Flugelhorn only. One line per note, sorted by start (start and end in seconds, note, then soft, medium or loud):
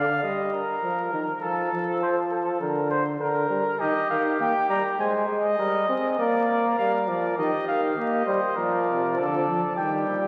0.00 0.22 F5 medium
0.23 0.53 D#5 medium
0.53 1.41 A#4 medium
1.42 2.01 A4 medium
2.03 2.16 C5 medium
2.31 2.60 A4 medium
2.61 2.90 A#4 medium
2.90 3.04 C5 medium
3.21 3.81 A#4 medium
3.80 4.99 G4 medium
5.00 5.38 C5 medium
5.59 5.87 A#4 medium
5.88 6.18 G#4 medium
6.19 6.47 A#4 medium
6.48 7.36 A#4 medium
7.38 7.96 G4 medium
7.97 8.26 G4 medium
8.26 8.57 C5 medium
8.56 9.16 A#4 medium
9.17 9.75 A4 medium
9.76 10.28 G4 medium